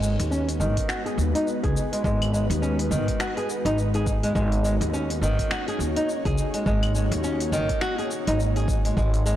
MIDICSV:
0, 0, Header, 1, 5, 480
1, 0, Start_track
1, 0, Tempo, 576923
1, 1701, Time_signature, 4, 2, 24, 8
1, 7790, End_track
2, 0, Start_track
2, 0, Title_t, "Ambient pad"
2, 0, Program_c, 0, 92
2, 0, Note_on_c, 0, 56, 74
2, 0, Note_on_c, 0, 59, 68
2, 0, Note_on_c, 0, 63, 72
2, 0, Note_on_c, 0, 66, 72
2, 0, Note_on_c, 0, 71, 89
2, 3587, Note_off_c, 0, 56, 0
2, 3587, Note_off_c, 0, 59, 0
2, 3588, Note_off_c, 0, 71, 0
2, 3621, Note_on_c, 0, 61, 76
2, 3622, Note_on_c, 0, 73, 89
2, 3623, Note_on_c, 0, 58, 77
2, 7427, Note_off_c, 0, 63, 0
2, 7428, Note_off_c, 0, 58, 0
2, 7428, Note_off_c, 0, 61, 0
2, 7428, Note_off_c, 0, 73, 0
2, 7460, Note_on_c, 0, 59, 76
2, 7461, Note_on_c, 0, 56, 78
2, 7462, Note_on_c, 0, 63, 72
2, 7463, Note_on_c, 0, 71, 89
2, 7790, Note_off_c, 0, 56, 0
2, 7790, Note_off_c, 0, 59, 0
2, 7790, Note_off_c, 0, 63, 0
2, 7790, Note_off_c, 0, 66, 0
2, 7790, Note_off_c, 0, 71, 0
2, 7790, End_track
3, 0, Start_track
3, 0, Title_t, "Nylon-string guitar"
3, 0, Program_c, 1, 24
3, 18, Note_on_c, 1, 56, 72
3, 100, Note_off_c, 1, 56, 0
3, 258, Note_on_c, 1, 61, 73
3, 394, Note_off_c, 1, 61, 0
3, 498, Note_on_c, 1, 51, 75
3, 730, Note_off_c, 1, 51, 0
3, 739, Note_on_c, 1, 66, 87
3, 867, Note_off_c, 1, 66, 0
3, 878, Note_on_c, 1, 68, 65
3, 974, Note_off_c, 1, 68, 0
3, 1121, Note_on_c, 1, 63, 70
3, 1215, Note_off_c, 1, 63, 0
3, 1359, Note_on_c, 1, 68, 72
3, 1587, Note_off_c, 1, 68, 0
3, 1602, Note_on_c, 1, 56, 71
3, 1691, Note_off_c, 1, 56, 0
3, 1700, Note_on_c, 1, 56, 88
3, 1931, Note_off_c, 1, 56, 0
3, 1942, Note_on_c, 1, 56, 67
3, 2022, Note_off_c, 1, 56, 0
3, 2180, Note_on_c, 1, 61, 71
3, 2315, Note_off_c, 1, 61, 0
3, 2421, Note_on_c, 1, 51, 73
3, 2651, Note_off_c, 1, 51, 0
3, 2660, Note_on_c, 1, 66, 89
3, 2788, Note_off_c, 1, 66, 0
3, 2804, Note_on_c, 1, 68, 71
3, 2897, Note_off_c, 1, 68, 0
3, 3042, Note_on_c, 1, 63, 74
3, 3136, Note_off_c, 1, 63, 0
3, 3284, Note_on_c, 1, 68, 76
3, 3509, Note_off_c, 1, 68, 0
3, 3523, Note_on_c, 1, 56, 74
3, 3609, Note_off_c, 1, 56, 0
3, 3619, Note_on_c, 1, 56, 95
3, 3850, Note_off_c, 1, 56, 0
3, 3864, Note_on_c, 1, 56, 78
3, 3943, Note_off_c, 1, 56, 0
3, 4106, Note_on_c, 1, 61, 77
3, 4238, Note_off_c, 1, 61, 0
3, 4346, Note_on_c, 1, 51, 75
3, 4574, Note_off_c, 1, 51, 0
3, 4587, Note_on_c, 1, 66, 85
3, 4711, Note_off_c, 1, 66, 0
3, 4726, Note_on_c, 1, 68, 68
3, 4818, Note_off_c, 1, 68, 0
3, 4962, Note_on_c, 1, 63, 77
3, 5056, Note_off_c, 1, 63, 0
3, 5202, Note_on_c, 1, 68, 77
3, 5428, Note_off_c, 1, 68, 0
3, 5441, Note_on_c, 1, 56, 68
3, 5530, Note_off_c, 1, 56, 0
3, 5542, Note_on_c, 1, 56, 99
3, 5772, Note_off_c, 1, 56, 0
3, 5784, Note_on_c, 1, 56, 69
3, 5863, Note_off_c, 1, 56, 0
3, 6022, Note_on_c, 1, 61, 75
3, 6156, Note_off_c, 1, 61, 0
3, 6261, Note_on_c, 1, 51, 71
3, 6491, Note_off_c, 1, 51, 0
3, 6501, Note_on_c, 1, 66, 93
3, 6628, Note_off_c, 1, 66, 0
3, 6644, Note_on_c, 1, 68, 64
3, 6737, Note_off_c, 1, 68, 0
3, 6885, Note_on_c, 1, 63, 74
3, 6977, Note_off_c, 1, 63, 0
3, 7124, Note_on_c, 1, 68, 69
3, 7349, Note_off_c, 1, 68, 0
3, 7364, Note_on_c, 1, 56, 69
3, 7452, Note_off_c, 1, 56, 0
3, 7463, Note_on_c, 1, 56, 87
3, 7692, Note_off_c, 1, 56, 0
3, 7702, Note_on_c, 1, 56, 71
3, 7782, Note_off_c, 1, 56, 0
3, 7790, End_track
4, 0, Start_track
4, 0, Title_t, "Upright bass"
4, 0, Program_c, 2, 32
4, 0, Note_on_c, 2, 32, 92
4, 125, Note_off_c, 2, 32, 0
4, 161, Note_on_c, 2, 39, 92
4, 497, Note_on_c, 2, 32, 79
4, 509, Note_off_c, 2, 39, 0
4, 617, Note_off_c, 2, 32, 0
4, 979, Note_on_c, 2, 39, 83
4, 1098, Note_off_c, 2, 39, 0
4, 1364, Note_on_c, 2, 37, 77
4, 1445, Note_off_c, 2, 37, 0
4, 1699, Note_on_c, 2, 32, 98
4, 2044, Note_off_c, 2, 32, 0
4, 2078, Note_on_c, 2, 39, 100
4, 2419, Note_on_c, 2, 32, 79
4, 2431, Note_off_c, 2, 39, 0
4, 2538, Note_off_c, 2, 32, 0
4, 3037, Note_on_c, 2, 32, 91
4, 3592, Note_off_c, 2, 32, 0
4, 3622, Note_on_c, 2, 32, 94
4, 3965, Note_off_c, 2, 32, 0
4, 4000, Note_on_c, 2, 39, 97
4, 4339, Note_on_c, 2, 32, 80
4, 4351, Note_off_c, 2, 39, 0
4, 4458, Note_off_c, 2, 32, 0
4, 4817, Note_on_c, 2, 39, 80
4, 4937, Note_off_c, 2, 39, 0
4, 5201, Note_on_c, 2, 37, 80
4, 5284, Note_off_c, 2, 37, 0
4, 5541, Note_on_c, 2, 32, 93
4, 5885, Note_off_c, 2, 32, 0
4, 5919, Note_on_c, 2, 39, 100
4, 6256, Note_on_c, 2, 32, 77
4, 6269, Note_off_c, 2, 39, 0
4, 6377, Note_off_c, 2, 32, 0
4, 6884, Note_on_c, 2, 32, 94
4, 7436, Note_off_c, 2, 32, 0
4, 7461, Note_on_c, 2, 32, 96
4, 7790, Note_off_c, 2, 32, 0
4, 7790, End_track
5, 0, Start_track
5, 0, Title_t, "Drums"
5, 24, Note_on_c, 9, 82, 71
5, 107, Note_off_c, 9, 82, 0
5, 163, Note_on_c, 9, 46, 51
5, 169, Note_on_c, 9, 82, 31
5, 246, Note_off_c, 9, 46, 0
5, 253, Note_off_c, 9, 82, 0
5, 266, Note_on_c, 9, 82, 42
5, 349, Note_off_c, 9, 82, 0
5, 405, Note_on_c, 9, 46, 42
5, 411, Note_on_c, 9, 82, 21
5, 488, Note_off_c, 9, 46, 0
5, 494, Note_off_c, 9, 82, 0
5, 505, Note_on_c, 9, 82, 69
5, 588, Note_off_c, 9, 82, 0
5, 642, Note_on_c, 9, 46, 55
5, 643, Note_on_c, 9, 36, 59
5, 648, Note_on_c, 9, 82, 30
5, 725, Note_off_c, 9, 46, 0
5, 726, Note_off_c, 9, 36, 0
5, 731, Note_off_c, 9, 82, 0
5, 740, Note_on_c, 9, 26, 75
5, 746, Note_on_c, 9, 82, 42
5, 823, Note_off_c, 9, 26, 0
5, 829, Note_off_c, 9, 82, 0
5, 883, Note_on_c, 9, 46, 30
5, 890, Note_on_c, 9, 82, 21
5, 967, Note_off_c, 9, 46, 0
5, 973, Note_off_c, 9, 82, 0
5, 989, Note_on_c, 9, 82, 71
5, 1072, Note_off_c, 9, 82, 0
5, 1125, Note_on_c, 9, 46, 58
5, 1131, Note_on_c, 9, 82, 32
5, 1208, Note_off_c, 9, 46, 0
5, 1214, Note_off_c, 9, 82, 0
5, 1227, Note_on_c, 9, 82, 42
5, 1310, Note_off_c, 9, 82, 0
5, 1362, Note_on_c, 9, 36, 96
5, 1362, Note_on_c, 9, 46, 29
5, 1368, Note_on_c, 9, 82, 19
5, 1445, Note_off_c, 9, 46, 0
5, 1446, Note_off_c, 9, 36, 0
5, 1451, Note_off_c, 9, 82, 0
5, 1470, Note_on_c, 9, 82, 72
5, 1553, Note_off_c, 9, 82, 0
5, 1605, Note_on_c, 9, 46, 52
5, 1612, Note_on_c, 9, 82, 30
5, 1688, Note_off_c, 9, 46, 0
5, 1695, Note_off_c, 9, 82, 0
5, 1701, Note_on_c, 9, 36, 118
5, 1709, Note_on_c, 9, 82, 45
5, 1784, Note_off_c, 9, 36, 0
5, 1793, Note_off_c, 9, 82, 0
5, 1846, Note_on_c, 9, 46, 45
5, 1846, Note_on_c, 9, 75, 59
5, 1852, Note_on_c, 9, 82, 23
5, 1929, Note_off_c, 9, 46, 0
5, 1929, Note_off_c, 9, 75, 0
5, 1935, Note_off_c, 9, 82, 0
5, 1949, Note_on_c, 9, 82, 71
5, 2032, Note_off_c, 9, 82, 0
5, 2085, Note_on_c, 9, 46, 53
5, 2091, Note_on_c, 9, 82, 31
5, 2168, Note_off_c, 9, 46, 0
5, 2175, Note_off_c, 9, 82, 0
5, 2187, Note_on_c, 9, 82, 41
5, 2270, Note_off_c, 9, 82, 0
5, 2324, Note_on_c, 9, 46, 45
5, 2330, Note_on_c, 9, 82, 22
5, 2407, Note_off_c, 9, 46, 0
5, 2413, Note_off_c, 9, 82, 0
5, 2427, Note_on_c, 9, 82, 72
5, 2510, Note_off_c, 9, 82, 0
5, 2564, Note_on_c, 9, 36, 58
5, 2564, Note_on_c, 9, 46, 51
5, 2570, Note_on_c, 9, 82, 31
5, 2647, Note_off_c, 9, 36, 0
5, 2647, Note_off_c, 9, 46, 0
5, 2653, Note_off_c, 9, 82, 0
5, 2662, Note_on_c, 9, 26, 73
5, 2668, Note_on_c, 9, 82, 44
5, 2745, Note_off_c, 9, 26, 0
5, 2752, Note_off_c, 9, 82, 0
5, 2805, Note_on_c, 9, 46, 30
5, 2811, Note_on_c, 9, 82, 21
5, 2888, Note_off_c, 9, 46, 0
5, 2894, Note_off_c, 9, 82, 0
5, 2909, Note_on_c, 9, 82, 73
5, 2992, Note_off_c, 9, 82, 0
5, 3042, Note_on_c, 9, 46, 56
5, 3049, Note_on_c, 9, 82, 34
5, 3125, Note_off_c, 9, 46, 0
5, 3132, Note_off_c, 9, 82, 0
5, 3147, Note_on_c, 9, 82, 46
5, 3230, Note_off_c, 9, 82, 0
5, 3279, Note_on_c, 9, 46, 28
5, 3285, Note_on_c, 9, 82, 20
5, 3362, Note_off_c, 9, 46, 0
5, 3369, Note_off_c, 9, 82, 0
5, 3382, Note_on_c, 9, 36, 94
5, 3384, Note_on_c, 9, 82, 73
5, 3466, Note_off_c, 9, 36, 0
5, 3468, Note_off_c, 9, 82, 0
5, 3523, Note_on_c, 9, 46, 50
5, 3529, Note_on_c, 9, 82, 31
5, 3606, Note_off_c, 9, 46, 0
5, 3612, Note_off_c, 9, 82, 0
5, 3624, Note_on_c, 9, 36, 127
5, 3627, Note_on_c, 9, 82, 42
5, 3707, Note_off_c, 9, 36, 0
5, 3710, Note_off_c, 9, 82, 0
5, 3762, Note_on_c, 9, 46, 42
5, 3768, Note_on_c, 9, 82, 23
5, 3845, Note_off_c, 9, 46, 0
5, 3851, Note_off_c, 9, 82, 0
5, 3866, Note_on_c, 9, 82, 77
5, 3949, Note_off_c, 9, 82, 0
5, 4003, Note_on_c, 9, 46, 52
5, 4009, Note_on_c, 9, 82, 33
5, 4086, Note_off_c, 9, 46, 0
5, 4093, Note_off_c, 9, 82, 0
5, 4109, Note_on_c, 9, 82, 46
5, 4192, Note_off_c, 9, 82, 0
5, 4246, Note_on_c, 9, 46, 44
5, 4252, Note_on_c, 9, 82, 22
5, 4329, Note_off_c, 9, 46, 0
5, 4335, Note_off_c, 9, 82, 0
5, 4352, Note_on_c, 9, 82, 73
5, 4436, Note_off_c, 9, 82, 0
5, 4485, Note_on_c, 9, 36, 59
5, 4486, Note_on_c, 9, 46, 52
5, 4492, Note_on_c, 9, 82, 35
5, 4568, Note_off_c, 9, 36, 0
5, 4569, Note_off_c, 9, 46, 0
5, 4575, Note_off_c, 9, 82, 0
5, 4583, Note_on_c, 9, 26, 74
5, 4589, Note_on_c, 9, 82, 41
5, 4666, Note_off_c, 9, 26, 0
5, 4672, Note_off_c, 9, 82, 0
5, 4724, Note_on_c, 9, 46, 27
5, 4731, Note_on_c, 9, 82, 21
5, 4808, Note_off_c, 9, 46, 0
5, 4814, Note_off_c, 9, 82, 0
5, 4829, Note_on_c, 9, 82, 67
5, 4912, Note_off_c, 9, 82, 0
5, 4963, Note_on_c, 9, 46, 52
5, 4969, Note_on_c, 9, 82, 37
5, 5046, Note_off_c, 9, 46, 0
5, 5052, Note_off_c, 9, 82, 0
5, 5068, Note_on_c, 9, 82, 48
5, 5151, Note_off_c, 9, 82, 0
5, 5203, Note_on_c, 9, 36, 102
5, 5203, Note_on_c, 9, 46, 26
5, 5210, Note_on_c, 9, 82, 22
5, 5287, Note_off_c, 9, 36, 0
5, 5287, Note_off_c, 9, 46, 0
5, 5293, Note_off_c, 9, 82, 0
5, 5307, Note_on_c, 9, 82, 75
5, 5391, Note_off_c, 9, 82, 0
5, 5440, Note_on_c, 9, 46, 47
5, 5447, Note_on_c, 9, 82, 31
5, 5524, Note_off_c, 9, 46, 0
5, 5530, Note_off_c, 9, 82, 0
5, 5542, Note_on_c, 9, 36, 117
5, 5545, Note_on_c, 9, 82, 41
5, 5625, Note_off_c, 9, 36, 0
5, 5628, Note_off_c, 9, 82, 0
5, 5681, Note_on_c, 9, 46, 40
5, 5681, Note_on_c, 9, 75, 56
5, 5687, Note_on_c, 9, 82, 22
5, 5764, Note_off_c, 9, 46, 0
5, 5764, Note_off_c, 9, 75, 0
5, 5770, Note_off_c, 9, 82, 0
5, 5784, Note_on_c, 9, 82, 77
5, 5867, Note_off_c, 9, 82, 0
5, 5921, Note_on_c, 9, 46, 50
5, 5927, Note_on_c, 9, 82, 32
5, 6004, Note_off_c, 9, 46, 0
5, 6011, Note_off_c, 9, 82, 0
5, 6022, Note_on_c, 9, 82, 44
5, 6105, Note_off_c, 9, 82, 0
5, 6161, Note_on_c, 9, 46, 43
5, 6167, Note_on_c, 9, 82, 22
5, 6244, Note_off_c, 9, 46, 0
5, 6250, Note_off_c, 9, 82, 0
5, 6266, Note_on_c, 9, 82, 73
5, 6349, Note_off_c, 9, 82, 0
5, 6400, Note_on_c, 9, 46, 46
5, 6404, Note_on_c, 9, 36, 61
5, 6407, Note_on_c, 9, 82, 30
5, 6484, Note_off_c, 9, 46, 0
5, 6487, Note_off_c, 9, 36, 0
5, 6490, Note_off_c, 9, 82, 0
5, 6500, Note_on_c, 9, 26, 72
5, 6507, Note_on_c, 9, 82, 46
5, 6584, Note_off_c, 9, 26, 0
5, 6590, Note_off_c, 9, 82, 0
5, 6644, Note_on_c, 9, 46, 27
5, 6650, Note_on_c, 9, 82, 21
5, 6727, Note_off_c, 9, 46, 0
5, 6733, Note_off_c, 9, 82, 0
5, 6747, Note_on_c, 9, 82, 72
5, 6830, Note_off_c, 9, 82, 0
5, 6884, Note_on_c, 9, 46, 55
5, 6890, Note_on_c, 9, 82, 35
5, 6967, Note_off_c, 9, 46, 0
5, 6973, Note_off_c, 9, 82, 0
5, 6987, Note_on_c, 9, 82, 47
5, 7071, Note_off_c, 9, 82, 0
5, 7122, Note_on_c, 9, 46, 27
5, 7129, Note_on_c, 9, 82, 21
5, 7206, Note_off_c, 9, 46, 0
5, 7212, Note_off_c, 9, 82, 0
5, 7222, Note_on_c, 9, 36, 103
5, 7227, Note_on_c, 9, 82, 75
5, 7305, Note_off_c, 9, 36, 0
5, 7311, Note_off_c, 9, 82, 0
5, 7364, Note_on_c, 9, 46, 49
5, 7370, Note_on_c, 9, 82, 32
5, 7447, Note_off_c, 9, 46, 0
5, 7453, Note_off_c, 9, 82, 0
5, 7462, Note_on_c, 9, 36, 114
5, 7468, Note_on_c, 9, 82, 42
5, 7545, Note_off_c, 9, 36, 0
5, 7551, Note_off_c, 9, 82, 0
5, 7603, Note_on_c, 9, 46, 40
5, 7609, Note_on_c, 9, 82, 21
5, 7686, Note_off_c, 9, 46, 0
5, 7693, Note_off_c, 9, 82, 0
5, 7707, Note_on_c, 9, 82, 72
5, 7790, Note_off_c, 9, 82, 0
5, 7790, End_track
0, 0, End_of_file